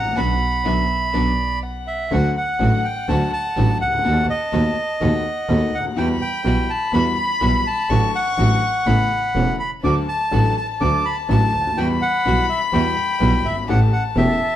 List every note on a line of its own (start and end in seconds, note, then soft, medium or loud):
0.00 0.06 G#1 soft
0.00 0.16 A1 medium
0.00 0.19 F#5 medium
0.00 0.19 A#5 medium
0.06 0.12 A1 soft
0.12 0.18 A#1 medium
0.17 0.35 B1 medium
0.17 0.33 D3 medium
0.17 0.33 F#3 medium
0.17 0.33 B3 medium
0.17 0.33 D4 medium
0.17 0.33 F#4 medium
0.17 0.67 F#5 medium
0.17 1.59 B5 loud
0.65 0.83 B1 medium
0.65 0.81 D3 medium
0.65 0.81 F#3 medium
0.65 0.81 B3 medium
0.65 0.81 D4 medium
0.65 0.81 F#4 medium
0.65 1.15 E5 medium
1.13 1.32 B1 medium
1.13 1.30 D3 medium
1.13 1.30 F#3 medium
1.13 1.29 B3 medium
1.13 1.30 B3 medium
1.13 1.29 D4 medium
1.13 1.30 F#4 medium
1.13 1.64 D5 medium
1.63 2.11 F#5 medium
1.88 2.13 E5 medium
2.11 2.32 D2 medium
2.11 2.32 D3 medium
2.11 2.32 F#3 medium
2.11 2.32 A3 medium
2.11 2.32 D4 medium
2.11 2.32 F#4 medium
2.11 4.06 F#5 medium
2.11 2.35 F#5 medium
2.37 2.87 F#5 medium
2.59 2.81 A1 medium
2.59 2.81 A2 medium
2.59 2.80 D3 medium
2.59 2.80 F#3 medium
2.59 2.80 A3 medium
2.59 2.81 A3 medium
2.59 2.81 D4 medium
2.59 2.81 F#4 medium
2.84 3.09 G5 medium
3.08 3.29 D2 medium
3.08 3.29 D3 medium
3.08 3.29 F#3 medium
3.08 3.29 A3 medium
3.08 3.29 D4 medium
3.08 3.29 F#4 medium
3.08 3.31 A5 medium
3.33 3.78 A5 medium
3.57 3.77 A1 medium
3.57 3.78 A2 medium
3.57 3.77 D3 medium
3.57 3.77 F#3 medium
3.57 3.77 A3 medium
3.57 3.78 A3 medium
3.57 3.77 D4 medium
3.57 3.77 F#4 medium
3.57 3.78 F#4 medium
3.81 4.05 C#2 soft
3.81 4.26 F#5 medium
3.87 3.93 C2 soft
3.93 3.99 C#2 medium
3.99 4.05 D2 medium
4.04 4.25 D#2 medium
4.04 4.26 D#2 medium
4.04 4.25 D#3 medium
4.04 4.25 A3 medium
4.04 4.25 B3 medium
4.04 4.25 D#4 medium
4.04 4.25 F#4 medium
4.04 4.25 A4 medium
4.04 5.04 A5 medium
4.30 5.78 D#5 medium
4.52 4.73 D#2 medium
4.52 4.74 D#2 medium
4.52 4.73 D#3 medium
4.52 4.73 A3 medium
4.52 4.73 B3 medium
4.52 4.73 D#4 medium
4.52 4.73 F#4 medium
4.52 4.73 A4 medium
5.00 5.21 D#2 medium
5.00 5.22 D#2 medium
5.00 5.21 D#3 medium
5.00 5.21 A3 medium
5.00 5.21 B3 medium
5.00 5.22 B3 medium
5.00 5.22 D#4 medium
5.00 5.21 F#4 medium
5.00 5.22 A4 medium
5.00 6.00 F#5 medium
5.48 5.70 D#2 medium
5.48 5.70 D#3 medium
5.48 5.70 A3 medium
5.48 5.70 B3 medium
5.48 5.70 D#4 medium
5.48 5.70 F#4 medium
5.48 5.70 A4 medium
5.73 5.96 D2 soft
5.73 5.85 F#5 medium
5.80 5.86 C#2 soft
5.85 5.91 D2 medium
5.91 5.97 D#2 medium
5.96 6.17 E2 medium
5.96 6.18 E2 medium
5.96 6.17 E3 medium
5.96 6.17 G3 medium
5.96 6.17 B3 medium
5.96 6.18 E4 medium
5.96 6.18 F#4 medium
5.96 6.09 G5 medium
5.96 6.45 B5 medium
6.22 6.71 G5 medium
6.44 6.65 B1 medium
6.44 6.66 B1 medium
6.44 6.65 B2 medium
6.44 6.65 E3 medium
6.44 6.65 G3 medium
6.44 6.66 G3 medium
6.44 6.65 B3 medium
6.44 6.66 E4 medium
6.44 6.65 F#4 medium
6.44 6.66 F#4 medium
6.44 7.91 B5 loud
6.70 6.92 A5 medium
6.93 7.14 E2 medium
6.93 7.14 E3 medium
6.93 7.14 G3 medium
6.93 7.14 B3 medium
6.93 7.14 E4 medium
6.93 7.14 F#4 medium
6.93 7.04 B5 medium
7.19 7.68 B5 loud
7.41 7.62 B1 medium
7.41 7.62 B2 medium
7.41 7.62 E3 medium
7.41 7.62 G3 medium
7.41 7.62 B3 medium
7.41 7.62 E4 medium
7.41 7.62 F#4 medium
7.67 8.11 A5 medium
7.89 8.10 A1 medium
7.89 8.10 A2 medium
7.89 8.10 D3 medium
7.89 8.10 F#3 medium
7.89 8.10 A3 medium
7.89 8.11 A3 medium
7.89 8.11 D4 medium
7.89 8.11 F#4 medium
7.89 8.88 C#6 loud
8.15 9.56 F#5 medium
8.38 8.58 A1 medium
8.38 8.59 A1 medium
8.38 8.59 A2 medium
8.38 8.59 D3 medium
8.38 8.59 F#3 medium
8.38 8.59 A3 medium
8.38 8.59 D4 medium
8.38 8.59 F#4 medium
8.86 9.07 A1 medium
8.86 9.07 A2 medium
8.86 9.07 C#3 medium
8.86 9.07 A3 medium
8.86 9.07 B3 medium
8.86 9.07 C#4 medium
8.86 9.07 E4 medium
8.86 9.08 A4 medium
8.86 9.60 B5 medium
9.35 9.56 E1 medium
9.35 9.56 E2 medium
9.35 9.56 C#3 medium
9.35 9.56 A3 medium
9.35 9.56 B3 medium
9.35 9.56 C#4 medium
9.35 9.56 E4 medium
9.35 9.56 A4 medium
9.60 9.71 B5 medium
9.83 10.04 D2 medium
9.83 10.04 D3 medium
9.83 10.04 F#3 medium
9.83 10.04 A3 medium
9.83 10.04 D4 medium
9.83 10.05 F#4 medium
9.83 11.79 A5 loud
9.83 9.95 D6 medium
10.08 10.56 A5 medium
10.31 10.52 A1 medium
10.31 10.53 A1 medium
10.31 10.52 A2 medium
10.31 10.52 D3 medium
10.31 10.52 F#3 medium
10.31 10.52 A3 medium
10.31 10.53 A3 medium
10.31 10.53 D4 medium
10.31 10.52 F#4 medium
10.31 10.53 F#4 medium
10.57 10.68 A5 medium
10.81 11.01 D2 medium
10.81 11.01 D3 medium
10.81 11.01 F#3 medium
10.81 11.01 A3 medium
10.81 11.01 D4 medium
10.81 11.01 F#4 medium
10.81 11.06 D6 medium
11.05 11.16 B5 medium
11.29 11.49 A1 medium
11.29 11.49 A2 medium
11.29 11.49 D3 medium
11.29 11.49 F#3 medium
11.29 11.50 A3 medium
11.29 11.50 D4 medium
11.29 11.49 F#4 medium
11.29 11.50 F#4 medium
11.29 11.79 A5 medium
11.53 11.77 D2 medium
11.60 11.66 C#2 soft
11.67 11.72 D2 medium
11.72 11.78 D#2 medium
11.77 11.97 E2 medium
11.77 11.98 E2 medium
11.77 11.98 E3 medium
11.77 11.98 G3 medium
11.77 11.98 B3 medium
11.77 11.98 E4 medium
11.77 11.98 F#4 medium
11.77 11.88 G5 medium
11.77 13.70 B5 loud
12.02 12.46 F#5 medium
12.25 12.46 B1 medium
12.25 12.46 B2 medium
12.25 12.46 E3 medium
12.25 12.45 G3 medium
12.25 12.46 G3 medium
12.25 12.46 B3 medium
12.25 12.45 E4 medium
12.25 12.46 F#4 medium
12.49 12.60 E5 medium
12.73 12.93 E2 medium
12.73 12.94 E2 medium
12.73 12.94 E3 medium
12.73 12.93 G3 medium
12.73 12.94 B3 medium
12.73 12.93 E4 medium
12.73 12.93 F#4 medium
12.73 12.94 F#4 medium
12.73 13.47 G5 medium
13.20 13.41 B1 medium
13.20 13.41 B1 loud
13.20 13.41 B2 medium
13.20 13.41 E3 medium
13.20 13.41 G3 medium
13.20 13.41 B3 medium
13.20 13.41 E4 medium
13.20 13.41 F#4 medium
13.45 13.68 G1 medium
13.45 13.56 E5 medium
13.51 13.57 F#1 soft
13.57 13.63 G1 medium
13.64 13.69 G#1 medium
13.68 13.89 A1 medium
13.68 13.89 A2 medium
13.68 13.89 E3 medium
13.68 13.89 A3 medium
13.68 13.89 C#4 medium
13.68 13.89 G4 medium
13.68 13.80 F#5 medium
13.68 14.56 A5 medium
13.93 14.03 F#5 medium
14.16 14.37 E1 medium
14.16 14.37 E2 medium
14.16 14.36 E3 medium
14.16 14.36 A3 medium
14.16 14.37 A3 medium
14.16 14.37 C#4 medium
14.16 14.37 G4 medium
14.16 14.56 E5 medium